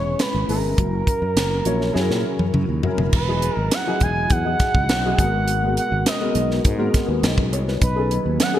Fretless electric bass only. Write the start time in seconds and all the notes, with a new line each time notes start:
Already playing: E1
0.34 G#1
0.49 G#1
0.63 G1
0.78 F#1
1.22 F#2
1.36 F#1
1.66 A#1
1.95 F#2
2.10 A#2
2.39 F#2
2.54 F#2
2.69 D#2
2.98 F1
3.13 E1
3.57 G#1
4.01 E1
4.31 E2
4.75 C#2
4.89 B1
5.19 G#1
5.92 G#1
6.35 B1
6.65 G#2
7.08 D#2
7.23 B1
7.53 C2
7.82 B1
8.26 D#2